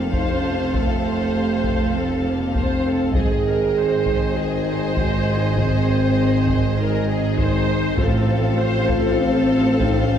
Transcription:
0.00 3.11 F1 soft
0.00 3.12 F1 soft
0.00 3.11 F2 soft
0.00 3.11 C3 soft
0.00 0.13 A#3 soft
0.00 0.13 C4 medium
0.00 3.12 C4 soft
0.00 3.12 A4 soft
0.00 3.12 C5 medium
0.00 3.12 F5 soft
0.00 impact medium
0.13 0.33 D#4 medium
0.13 0.72 C5 medium
0.13 taiko medium
0.34 0.54 C#4 medium
0.54 0.74 C4 medium
0.74 1.95 A3 medium
0.74 1.04 A4 soft
0.74 taiko medium
1.03 1.94 C5 medium
1.64 taiko medium
1.94 2.54 C4 medium
1.94 2.25 A4 medium
2.26 2.55 A#3 soft
2.55 3.14 C4 medium
2.55 2.85 C5 medium
2.55 taiko medium
2.85 3.15 A4 medium
3.14 7.82 G#1 medium
3.14 7.95 G#1 medium
3.14 7.95 G#2 soft
3.14 7.96 D#3 soft
3.14 7.98 C4 soft
3.14 4.33 G#4 medium
3.14 7.95 G#4 medium
3.14 3.45 G#4 medium
3.14 7.95 C5 medium
3.14 7.94 D#5 soft
3.14 taiko medium
3.47 3.76 A#4 soft
3.78 4.37 C5 medium
4.06 taiko medium
4.35 4.96 D#4 medium
4.35 4.67 G#4 medium
4.67 5.57 C5 medium
4.97 5.17 F#4 medium
4.97 taiko medium
5.17 5.37 F4 medium
5.36 5.56 D#4 medium
5.55 6.60 C4 medium
5.55 6.76 C5 medium
5.55 taiko medium
6.48 taiko medium
6.77 7.36 D#4 medium
6.77 7.08 A#4 medium
7.09 7.38 G#4 medium
7.37 7.97 D#4 medium
7.37 7.99 C5 medium
7.37 taiko medium
7.98 10.18 A1 medium
7.98 10.18 A2 medium
7.98 10.18 F3 medium
7.98 10.18 C4 medium
7.98 9.17 F4 loud
7.98 8.60 A4 medium
7.98 10.18 C5 medium
7.98 10.18 F5 medium
7.98 taiko medium
8.60 8.90 C5 medium
8.90 10.18 A4 medium
8.90 taiko medium
9.20 9.80 C4 loud
9.80 10.00 D#4 loud
9.80 taiko medium
10.01 10.18 C#4 medium

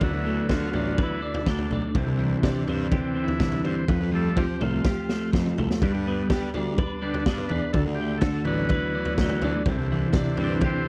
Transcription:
0.00 0.10 D2 loud
0.00 1.23 D3 medium
0.00 1.91 D3 soft
0.00 0.99 F#3 soft
0.00 1.00 B3 medium
0.00 0.74 D4 medium
0.00 0.47 E4 medium
0.00 kick loud
0.00 floor tom medium
0.13 0.41 D2 medium
0.26 1.46 A3 medium
0.49 0.68 D3 medium
0.49 1.00 F4 medium
0.49 1.71 F#4 medium
0.49 kick loud
0.49 snare medium
0.49 floor tom medium
0.73 0.92 A1 medium
0.73 1.21 D4 medium
0.73 floor tom medium
0.98 1.21 E3 soft
0.98 1.21 F#3 soft
0.98 1.22 B3 medium
0.98 1.95 B4 medium
0.98 kick loud
0.98 floor tom medium
1.03 1.50 E4 medium
1.22 1.72 D4 medium
1.34 floor tom medium
1.46 1.65 D2 medium
1.46 1.95 A3 medium
1.46 1.71 D4 medium
1.46 kick loud
1.46 snare medium
1.58 floor tom medium
1.71 1.80 B1 medium
1.71 1.96 D4 medium
1.71 floor tom medium
1.95 2.04 C2 loud
1.95 3.16 C3 medium
1.95 3.85 D3 soft
1.95 3.85 E3 soft
1.95 2.91 C4 medium
1.95 kick loud
1.95 floor tom medium
2.07 2.35 C2 medium
2.19 3.38 E3 medium
2.43 2.62 C3 medium
2.43 3.65 D4 medium
2.43 kick loud
2.43 snare medium
2.43 floor tom medium
2.68 2.86 G2 medium
2.68 3.14 C4 medium
2.68 floor tom medium
2.92 3.25 C4 medium
2.92 3.91 G4 medium
2.92 kick loud
2.92 floor tom medium
3.15 3.63 C4 medium
3.24 3.61 E4 medium
3.28 floor tom medium
3.39 3.59 C2 medium
3.39 3.88 E3 medium
3.39 kick loud
3.39 snare medium
3.52 floor tom medium
3.64 3.73 G2 medium
3.64 3.89 C4 medium
3.64 3.88 C5 medium
3.64 floor tom medium
3.88 3.98 F2 loud
3.88 4.11 F3 medium
3.88 4.11 B4 medium
3.88 kick loud
3.88 floor tom medium
4.01 4.28 F2 medium
4.12 5.31 F3 medium
4.12 4.45 F3 medium
4.12 4.45 G3 soft
4.12 4.46 A3 medium
4.12 4.39 A4 medium
4.36 4.55 F3 medium
4.36 5.57 C4 medium
4.36 4.62 G4 medium
4.36 kick loud
4.36 floor tom medium
4.61 4.79 C2 medium
4.61 5.08 A3 medium
4.61 5.30 F4 medium
4.61 floor tom medium
4.61 mid tom medium
4.84 5.82 G4 medium
4.84 kick loud
4.84 snare medium
5.09 5.57 A3 medium
5.09 snare medium
5.33 5.52 F2 medium
5.33 5.81 F3 medium
5.33 kick loud
5.33 snare medium
5.46 mid tom medium
5.58 5.67 C2 medium
5.58 5.82 A3 medium
5.58 floor tom medium
5.71 snare medium
5.82 5.91 G2 loud
5.82 6.50 D3 medium
5.82 6.51 G3 soft
5.82 7.03 G3 medium
5.82 6.51 B3 medium
5.82 kick loud
5.82 floor tom medium
5.94 6.22 G2 medium
6.07 7.25 B3 medium
6.30 6.48 G3 medium
6.30 7.50 G4 medium
6.30 kick loud
6.30 snare medium
6.30 floor tom medium
6.54 6.73 D2 medium
6.54 7.02 D4 medium
6.54 floor tom medium
6.78 7.08 D4 medium
6.78 7.75 B4 medium
6.78 kick loud
6.78 floor tom medium
7.02 7.24 D3 soft
7.02 7.24 G3 soft
7.02 7.24 B3 medium
7.02 7.51 D4 medium
7.09 7.51 D4 medium
7.14 floor tom medium
7.26 7.45 G2 medium
7.26 7.75 B3 medium
7.26 kick loud
7.26 snare medium
7.38 floor tom medium
7.48 7.60 E2 medium
7.48 8.47 D4 medium
7.48 7.72 B4 medium
7.48 floor tom medium
7.73 7.83 D2 medium
7.73 8.95 D3 medium
7.73 7.84 A4 medium
7.73 kick loud
7.73 floor tom medium
7.87 8.14 D2 medium
7.95 8.19 G4 medium
8.00 9.19 A3 medium
8.18 8.45 A4 medium
8.18 snare medium
8.18 floor tom medium
8.22 8.41 D3 medium
8.22 9.43 F#4 medium
8.22 kick loud
8.44 8.64 A1 loud
8.44 9.62 E3 medium
8.44 9.63 F#3 medium
8.44 9.63 B3 medium
8.44 8.94 D4 medium
8.44 9.14 B4 loud
8.44 floor tom medium
8.69 9.67 B4 medium
8.69 kick loud
8.69 floor tom medium
8.95 9.43 D4 medium
9.05 floor tom medium
9.18 9.37 D2 medium
9.18 9.68 A3 medium
9.18 kick loud
9.18 snare medium
9.29 floor tom medium
9.42 9.52 D2 loud
9.42 9.68 D4 medium
9.42 floor tom medium
9.66 9.75 C2 loud
9.66 10.88 C3 medium
9.66 10.88 D3 medium
9.66 10.88 E3 medium
9.66 10.88 C4 medium
9.66 kick loud
9.66 floor tom medium
9.78 10.06 C2 medium
9.92 10.88 E3 medium
10.13 10.32 C3 medium
10.13 10.88 D4 medium
10.13 kick loud
10.13 snare medium
10.13 floor tom medium
10.37 10.57 G2 medium
10.37 10.88 C4 medium
10.37 floor tom medium
10.44 10.54 D5 loud
10.61 10.88 G4 medium
10.61 kick loud
10.61 floor tom medium
10.66 10.88 C5 loud

